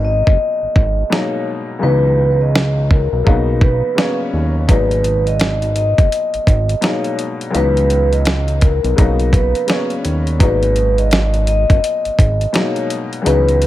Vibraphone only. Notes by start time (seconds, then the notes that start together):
0.05 D#5
1.12 C#5
1.83 B4
2.41 D#5
2.91 A#4
3.61 B4
4.68 B4
5.27 D#5
5.76 D#5
6.83 C#5
7.55 B4
8.12 D#5
8.62 A#4
9.33 B4
10.41 B4
10.98 D#5
11.48 D#5
12.54 C#5
13.26 B4